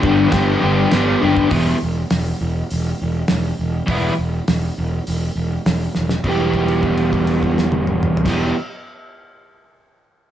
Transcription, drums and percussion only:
0.03 kick medium
0.32 kick loud
0.32 snare loud
0.32 crash medium
0.91 snare loud
0.91 crash medium
1.37 kick medium
1.51 kick loud
1.51 open hi-hat medium
2.10 snare loud
2.10 open hi-hat medium
2.70 open hi-hat medium
3.28 snare loud
3.28 open hi-hat medium
3.88 kick loud
3.88 open hi-hat medium
4.48 snare loud
4.48 open hi-hat medium
5.07 open hi-hat medium
5.66 snare loud
5.66 open hi-hat medium
5.95 snare medium
6.09 snare medium
6.24 kick loud
6.24 crash medium
6.54 kick medium
6.54 crash soft
6.68 crash soft
6.83 kick medium
6.83 crash soft
6.97 crash soft
7.13 kick medium
7.13 crash soft
7.27 crash soft
7.43 kick medium
7.43 crash soft
7.58 snare medium
7.72 high tom medium
7.87 mid tom medium
8.03 mid tom loud
8.17 floor tom loud
8.26 kick loud
8.26 snare loud
8.26 crash loud

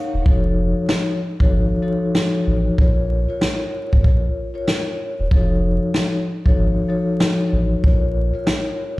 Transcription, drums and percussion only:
0.26 kick loud
0.89 snare loud
1.40 kick medium
2.15 snare loud
2.78 kick loud
3.41 snare loud
3.93 kick medium
4.04 kick loud
4.68 snare loud
5.31 kick loud
5.94 snare loud
6.46 kick medium
7.20 snare loud
7.84 kick loud
8.47 snare loud

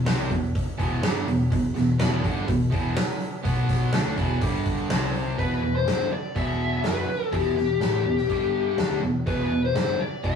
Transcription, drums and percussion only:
0.06 snare loud
0.06 open hi-hat medium
0.31 kick medium
0.31 open hi-hat soft
0.55 kick loud
0.55 open hi-hat medium
0.79 kick medium
0.79 open hi-hat medium
1.03 snare loud
1.03 open hi-hat medium
1.28 open hi-hat medium
1.52 kick loud
1.52 open hi-hat medium
1.76 snare soft
1.76 open hi-hat medium
2.00 snare loud
2.00 open hi-hat medium
2.24 kick medium
2.24 open hi-hat soft
2.48 kick medium
2.48 open hi-hat medium
2.72 kick medium
2.72 open hi-hat medium
2.97 snare loud
2.97 open hi-hat medium
3.20 open hi-hat medium
3.45 kick loud
3.45 open hi-hat medium
3.69 kick medium
3.69 snare soft
3.69 open hi-hat medium
3.93 snare loud
3.93 open hi-hat medium
4.17 kick medium
4.17 open hi-hat medium
4.41 kick loud
4.41 open hi-hat medium
4.65 kick medium
4.65 open hi-hat medium
4.90 snare loud
4.90 open hi-hat medium
5.14 open hi-hat medium
5.39 kick medium
5.39 open hi-hat soft
5.88 snare loud
5.88 open hi-hat soft
6.36 kick medium
6.36 open hi-hat soft
6.84 snare medium
6.84 open hi-hat medium
7.33 kick medium
7.33 open hi-hat medium
7.57 snare soft
7.81 snare medium
7.81 open hi-hat soft
8.18 snare soft
8.30 kick medium
8.30 open hi-hat soft
8.78 snare loud
8.78 open hi-hat soft
9.27 kick medium
9.27 open hi-hat soft
9.75 snare loud
9.75 open hi-hat soft
10.24 kick medium
10.24 open hi-hat soft

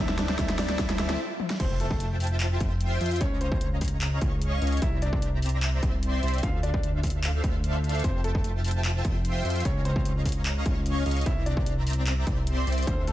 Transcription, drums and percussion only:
0.09 snare medium
0.19 snare medium
0.19 closed hi-hat medium
0.29 snare medium
0.39 kick loud
0.39 snare medium
0.39 closed hi-hat medium
0.50 snare medium
0.59 snare loud
0.59 open hi-hat medium
0.70 snare medium
0.79 kick loud
0.79 snare loud
0.79 closed hi-hat medium
0.90 snare medium
0.99 snare loud
0.99 closed hi-hat medium
1.10 snare medium
1.40 high tom medium
1.50 snare medium
1.60 kick loud
1.60 closed hi-hat medium
1.60 crash loud
1.80 closed hi-hat medium
1.91 kick loud
2.00 closed hi-hat medium
2.20 closed hi-hat medium
2.20 open hi-hat medium
2.27 closed hi-hat medium
2.40 clap loud
2.40 closed hi-hat medium
2.60 kick loud
2.60 closed hi-hat medium
2.81 closed hi-hat medium
3.01 closed hi-hat medium
3.06 closed hi-hat medium
3.11 closed hi-hat medium
3.16 closed hi-hat medium
3.21 kick loud
3.21 closed hi-hat medium
3.41 closed hi-hat medium
3.52 kick loud
3.61 closed hi-hat medium
3.81 kick medium
3.81 closed hi-hat medium
3.81 open hi-hat medium
3.88 closed hi-hat medium
4.01 clap loud
4.01 closed hi-hat medium
4.21 kick loud
4.21 closed hi-hat medium
4.42 closed hi-hat medium
4.62 closed hi-hat medium
4.67 closed hi-hat medium
4.72 closed hi-hat soft
4.77 closed hi-hat medium
4.82 kick loud
4.82 closed hi-hat medium
5.02 closed hi-hat medium
5.13 kick loud
5.22 closed hi-hat medium
5.42 closed hi-hat medium
5.42 open hi-hat medium
5.49 closed hi-hat medium
5.63 clap loud
5.63 closed hi-hat medium
5.83 kick loud
5.83 closed hi-hat medium
6.03 closed hi-hat medium
6.23 closed hi-hat soft
6.28 closed hi-hat medium
6.34 closed hi-hat soft
6.38 closed hi-hat medium
6.43 kick loud
6.43 closed hi-hat medium
6.63 closed hi-hat medium
6.74 kick loud
6.83 closed hi-hat medium
7.03 kick medium
7.03 closed hi-hat medium
7.03 open hi-hat medium
7.10 closed hi-hat medium
7.24 clap loud
7.24 closed hi-hat medium
7.44 kick loud
7.44 closed hi-hat medium
7.64 closed hi-hat medium
7.84 closed hi-hat soft
7.89 closed hi-hat medium
7.95 closed hi-hat soft
7.99 closed hi-hat medium
8.04 kick loud
8.04 closed hi-hat medium
8.24 closed hi-hat medium
8.35 kick loud
8.44 closed hi-hat medium
8.64 closed hi-hat medium
8.64 open hi-hat medium
8.71 closed hi-hat medium
8.85 clap loud
8.85 closed hi-hat medium
9.05 kick loud
9.05 closed hi-hat medium
9.25 closed hi-hat medium
9.45 closed hi-hat soft
9.50 closed hi-hat medium
9.56 closed hi-hat soft
9.60 closed hi-hat medium
9.65 kick loud
9.65 closed hi-hat medium
9.85 closed hi-hat medium
9.96 kick loud
10.05 closed hi-hat medium
10.26 kick medium
10.26 closed hi-hat medium
10.26 open hi-hat loud
10.32 closed hi-hat medium
10.46 clap loud
10.46 closed hi-hat medium
10.66 kick loud
10.66 closed hi-hat medium
10.86 closed hi-hat medium
11.06 closed hi-hat soft
11.11 closed hi-hat medium
11.17 closed hi-hat soft
11.21 closed hi-hat medium
11.26 kick loud
11.26 closed hi-hat medium
11.46 closed hi-hat medium
11.57 kick loud
11.66 closed hi-hat medium
11.87 closed hi-hat medium
11.87 open hi-hat loud
11.93 closed hi-hat medium
12.07 clap loud
12.07 closed hi-hat medium
12.27 kick loud
12.27 closed hi-hat medium
12.47 closed hi-hat medium
12.67 closed hi-hat medium
12.72 closed hi-hat medium
12.78 closed hi-hat soft
12.83 closed hi-hat medium
12.87 kick loud
12.87 closed hi-hat medium
13.07 closed hi-hat medium

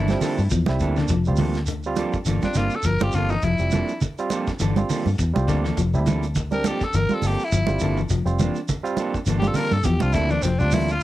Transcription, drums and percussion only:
0.08 snare soft
0.08 closed hi-hat soft
0.08 high conga medium
0.08 shekere soft
0.21 snare soft
0.21 open hi-hat medium
0.21 low conga medium
0.21 shekere medium
0.38 shekere soft
0.50 kick medium
0.50 closed hi-hat medium
0.50 shekere medium
0.66 snare soft
0.66 high conga loud
0.66 shekere soft
0.80 kick medium
0.80 closed hi-hat medium
0.80 shekere medium
0.96 snare soft
0.96 shekere soft
1.08 kick medium
1.08 closed hi-hat medium
1.08 shekere medium
1.25 shekere soft
1.36 open hi-hat medium
1.36 high conga medium
1.36 low conga medium
1.36 shekere medium
1.54 snare soft
1.54 closed hi-hat soft
1.54 shekere soft
1.66 closed hi-hat medium
1.66 shekere medium
1.83 shekere soft
1.96 closed hi-hat medium
1.96 high conga medium
1.96 shekere medium
2.13 kick medium
2.13 shekere soft
2.25 closed hi-hat medium
2.25 shekere medium
2.42 kick medium
2.42 snare soft
2.42 high conga medium
2.42 shekere soft
2.54 snare soft
2.54 closed hi-hat soft
2.54 low conga medium
2.54 shekere medium
2.70 shekere soft
2.83 kick medium
2.83 closed hi-hat medium
2.83 shekere medium
2.99 closed hi-hat soft
2.99 high conga loud
2.99 shekere soft
3.12 kick medium
3.12 closed hi-hat soft
3.12 shekere medium
3.29 shekere soft
3.42 kick medium
3.42 closed hi-hat medium
3.42 shekere medium
3.58 closed hi-hat soft
3.58 shekere soft
3.71 closed hi-hat soft
3.71 high conga medium
3.71 low conga medium
3.71 shekere medium
3.88 closed hi-hat soft
3.88 shekere soft
4.01 kick medium
4.01 closed hi-hat medium
4.01 low conga medium
4.01 shekere medium
4.18 closed hi-hat soft
4.18 shekere soft
4.30 closed hi-hat medium
4.30 high conga medium
4.30 shekere medium
4.47 kick medium
4.47 snare soft
4.47 closed hi-hat soft
4.47 shekere soft
4.60 closed hi-hat medium
4.60 shekere medium
4.76 closed hi-hat soft
4.76 high conga medium
4.76 shekere soft
4.89 open hi-hat medium
4.89 low conga medium
4.89 shekere medium
5.06 high conga medium
5.06 shekere soft
5.18 kick medium
5.18 closed hi-hat medium
5.18 shekere medium
5.36 high conga medium
5.36 shekere soft
5.48 kick medium
5.48 snare soft
5.48 closed hi-hat medium
5.48 shekere medium
5.65 snare soft
5.65 shekere soft
5.77 kick medium
5.77 closed hi-hat medium
5.77 shekere medium
5.94 shekere soft
6.06 closed hi-hat medium
6.06 high conga medium
6.06 low conga medium
6.06 shekere medium
6.23 closed hi-hat soft
6.23 shekere soft
6.35 kick medium
6.35 closed hi-hat medium
6.35 low conga medium
6.35 shekere medium
6.51 high conga medium
6.51 shekere soft
6.64 closed hi-hat medium
6.64 high conga medium
6.64 shekere medium
6.81 kick medium
6.81 snare soft
6.81 shekere soft
6.93 closed hi-hat medium
6.93 shekere medium
7.09 high conga medium
7.09 shekere soft
7.22 open hi-hat medium
7.22 low conga medium
7.22 shekere medium
7.39 shekere soft
7.52 kick loud
7.52 shekere loud
7.67 closed hi-hat soft
7.67 high conga medium
7.67 shekere soft
7.79 kick medium
7.79 closed hi-hat medium
7.79 shekere medium
7.97 shekere soft
8.09 kick medium
8.09 closed hi-hat medium
8.09 shekere medium
8.26 closed hi-hat soft
8.26 shekere soft
8.39 closed hi-hat soft
8.39 high conga medium
8.39 low conga medium
8.39 shekere medium
8.55 closed hi-hat soft
8.55 shekere soft
8.68 kick medium
8.68 closed hi-hat medium
8.68 low conga medium
8.68 shekere medium
8.85 closed hi-hat soft
8.85 shekere soft
8.97 closed hi-hat medium
8.97 high conga medium
8.97 shekere medium
9.14 kick medium
9.14 closed hi-hat soft
9.14 shekere soft
9.26 closed hi-hat medium
9.26 shekere medium
9.42 closed hi-hat soft
9.42 high conga medium
9.42 shekere soft
9.54 open hi-hat medium
9.54 low conga medium
9.54 shekere medium
9.71 high conga medium
9.71 shekere soft
9.83 kick loud
9.83 closed hi-hat medium
9.83 low conga medium
9.83 shekere medium
10.00 high conga loud
10.00 shekere soft
10.13 kick medium
10.13 closed hi-hat medium
10.13 shekere medium
10.29 shekere soft
10.42 kick medium
10.42 closed hi-hat medium
10.42 shekere loud
10.59 shekere soft
10.71 open hi-hat medium
10.71 high conga medium
10.71 low conga medium
10.71 shekere medium
10.88 closed hi-hat soft
10.88 shekere soft

